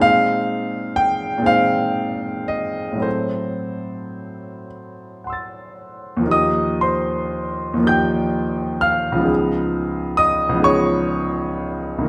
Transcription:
Already playing: A#2 G#3 C4
0.00 D#4 C5 F5
0.96 G5
1.38 A#2 G#3
1.42 C4 D#4
1.46 C5 F5
2.48 D#5
2.93 A2 F#3
2.98 C4 E4 A4
3.02 C5
5.24 F#5 C6
5.30 E6 A6
6.17 D#2 F3
6.23 A#3 D#4
6.29 G4 D#5 D#6
6.81 C5 C6
7.74 D#2 F3
7.80 A#3 D#4
7.86 G4 G5 G6
8.81 F5 F6
9.12 C#2 F3
9.19 B3 D#4
9.25 G#4
10.17 D#5 D#6
10.49 C#2 F3
10.56 B3 D#4
10.62 G#4 C#5 C#6
11.98 C2 D#3
12.04 A#3

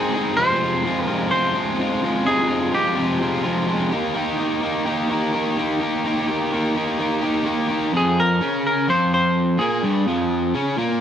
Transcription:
Already playing: G#3 C4 D#4 G#4
0.14 G#3 C4 D#4 G#4
0.37 F2 C3 F3 G#3 C4 F4 C5
0.61 F3 G#3 C4 F4
0.85 F3 G#3 C4 F4
1.06 F3 G#3 C4 F4 A#4
1.11 F2 C3
1.31 F3 G#3 C4 F4 C5
1.54 F2 C3 F3 G#3 C4 F4
1.79 F3 G#3 C4 F4
2.02 G#3 C4 F4
2.06 F3
2.25 F2 C3 F3 G#3 C4 G#4
2.29 F4
2.49 F3 G#3 C4 F4
2.71 F3 G#3 C4 F4 G4
2.95 F2 C3 F3 G#3 C4 F4
3.19 F3 G#3 C4 F4
3.43 F2 C3 F3 G#3 C4 F4
3.67 F3 G#3 C4 F4
3.91 A#3 D#4 G4
3.95 D#3
4.14 D#3 A#3 D#4 G4
4.37 A#3 D#4 G4
4.61 D#3 A#3 D#4 G4
4.85 D#3 A#3 D#4 G4
5.09 D#3 A#3 D#4 G4
5.32 A#3 D#4 G4
5.36 D#3
5.57 D#3 A#3 D#4 G4
5.80 A#3 D#4 G4
6.04 D#3 A#3 D#4 G4
6.28 A#3 D#4 G4
6.52 D#3 A#3 D#4
6.56 G4
6.75 D#3 A#3 D#4 G4
6.99 D#3 A#3 D#4 G4
7.21 D#3 A#3 D#4 G4
7.44 D#3 A#3 D#4 G4
7.69 A#3 D#4 G4
7.93 F2 F3
7.97 G#4
8.20 A#4
8.41 C#3 C#4
8.67 A#4
8.88 F2 F3 C5
9.14 C5
9.58 A#2 A#3 G#4
9.83 G2 G3
10.07 F2 F3
10.54 C#3 C#4
10.77 A#2 A#3

